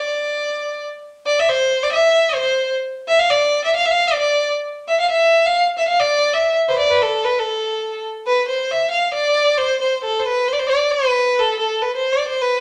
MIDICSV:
0, 0, Header, 1, 2, 480
1, 0, Start_track
1, 0, Key_signature, 0, "minor"
1, 0, Tempo, 448766
1, 163, Time_signature, 2, 2, 24, 8
1, 13480, End_track
2, 0, Start_track
2, 0, Title_t, "Violin"
2, 0, Program_c, 0, 40
2, 0, Note_on_c, 0, 74, 69
2, 897, Note_off_c, 0, 74, 0
2, 1351, Note_on_c, 0, 74, 88
2, 1489, Note_on_c, 0, 76, 84
2, 1505, Note_off_c, 0, 74, 0
2, 1595, Note_on_c, 0, 72, 96
2, 1611, Note_off_c, 0, 76, 0
2, 1958, Note_on_c, 0, 74, 94
2, 1974, Note_off_c, 0, 72, 0
2, 2052, Note_off_c, 0, 74, 0
2, 2058, Note_on_c, 0, 76, 92
2, 2451, Note_on_c, 0, 72, 97
2, 2467, Note_off_c, 0, 76, 0
2, 2551, Note_off_c, 0, 72, 0
2, 2557, Note_on_c, 0, 72, 92
2, 2903, Note_off_c, 0, 72, 0
2, 3297, Note_on_c, 0, 76, 93
2, 3416, Note_on_c, 0, 77, 90
2, 3432, Note_off_c, 0, 76, 0
2, 3534, Note_on_c, 0, 74, 91
2, 3550, Note_off_c, 0, 77, 0
2, 3890, Note_off_c, 0, 74, 0
2, 3896, Note_on_c, 0, 76, 82
2, 4011, Note_off_c, 0, 76, 0
2, 4020, Note_on_c, 0, 77, 94
2, 4122, Note_on_c, 0, 76, 84
2, 4138, Note_off_c, 0, 77, 0
2, 4179, Note_on_c, 0, 77, 102
2, 4195, Note_off_c, 0, 76, 0
2, 4355, Note_on_c, 0, 74, 85
2, 4371, Note_off_c, 0, 77, 0
2, 4476, Note_off_c, 0, 74, 0
2, 4482, Note_on_c, 0, 74, 81
2, 4827, Note_off_c, 0, 74, 0
2, 5222, Note_on_c, 0, 76, 81
2, 5334, Note_off_c, 0, 76, 0
2, 5350, Note_on_c, 0, 77, 88
2, 5456, Note_off_c, 0, 77, 0
2, 5462, Note_on_c, 0, 76, 93
2, 5838, Note_on_c, 0, 77, 92
2, 5854, Note_off_c, 0, 76, 0
2, 6070, Note_off_c, 0, 77, 0
2, 6181, Note_on_c, 0, 76, 78
2, 6284, Note_off_c, 0, 76, 0
2, 6290, Note_on_c, 0, 77, 83
2, 6414, Note_on_c, 0, 74, 94
2, 6430, Note_off_c, 0, 77, 0
2, 6774, Note_on_c, 0, 76, 83
2, 6790, Note_off_c, 0, 74, 0
2, 7017, Note_off_c, 0, 76, 0
2, 7145, Note_on_c, 0, 72, 80
2, 7162, Note_on_c, 0, 71, 58
2, 7179, Note_off_c, 0, 72, 0
2, 7189, Note_on_c, 0, 72, 79
2, 7205, Note_off_c, 0, 71, 0
2, 7250, Note_off_c, 0, 72, 0
2, 7256, Note_on_c, 0, 74, 82
2, 7369, Note_off_c, 0, 74, 0
2, 7377, Note_on_c, 0, 71, 86
2, 7508, Note_on_c, 0, 69, 81
2, 7524, Note_off_c, 0, 71, 0
2, 7747, Note_on_c, 0, 71, 75
2, 7763, Note_off_c, 0, 69, 0
2, 7900, Note_on_c, 0, 69, 74
2, 7916, Note_off_c, 0, 71, 0
2, 8597, Note_off_c, 0, 69, 0
2, 8844, Note_on_c, 0, 71, 84
2, 9053, Note_off_c, 0, 71, 0
2, 9072, Note_on_c, 0, 72, 69
2, 9315, Note_on_c, 0, 76, 76
2, 9331, Note_off_c, 0, 72, 0
2, 9521, Note_off_c, 0, 76, 0
2, 9527, Note_on_c, 0, 77, 70
2, 9752, Note_off_c, 0, 77, 0
2, 9773, Note_on_c, 0, 74, 90
2, 10241, Note_on_c, 0, 72, 91
2, 10257, Note_off_c, 0, 74, 0
2, 10485, Note_off_c, 0, 72, 0
2, 10493, Note_on_c, 0, 72, 74
2, 10714, Note_off_c, 0, 72, 0
2, 10735, Note_on_c, 0, 69, 85
2, 10905, Note_on_c, 0, 72, 55
2, 10921, Note_off_c, 0, 69, 0
2, 10970, Note_on_c, 0, 71, 82
2, 10986, Note_off_c, 0, 72, 0
2, 11210, Note_on_c, 0, 72, 72
2, 11226, Note_off_c, 0, 71, 0
2, 11260, Note_on_c, 0, 74, 74
2, 11276, Note_off_c, 0, 72, 0
2, 11328, Note_on_c, 0, 72, 90
2, 11344, Note_off_c, 0, 74, 0
2, 11425, Note_off_c, 0, 72, 0
2, 11431, Note_on_c, 0, 74, 78
2, 11671, Note_on_c, 0, 71, 91
2, 11687, Note_off_c, 0, 74, 0
2, 12181, Note_on_c, 0, 69, 86
2, 12197, Note_off_c, 0, 71, 0
2, 12393, Note_off_c, 0, 69, 0
2, 12400, Note_on_c, 0, 69, 72
2, 12639, Note_on_c, 0, 71, 72
2, 12655, Note_off_c, 0, 69, 0
2, 12782, Note_off_c, 0, 71, 0
2, 12788, Note_on_c, 0, 72, 74
2, 12967, Note_on_c, 0, 74, 78
2, 12983, Note_off_c, 0, 72, 0
2, 13123, Note_off_c, 0, 74, 0
2, 13135, Note_on_c, 0, 72, 83
2, 13280, Note_on_c, 0, 71, 84
2, 13297, Note_off_c, 0, 72, 0
2, 13447, Note_on_c, 0, 72, 79
2, 13463, Note_off_c, 0, 71, 0
2, 13480, Note_off_c, 0, 72, 0
2, 13480, End_track
0, 0, End_of_file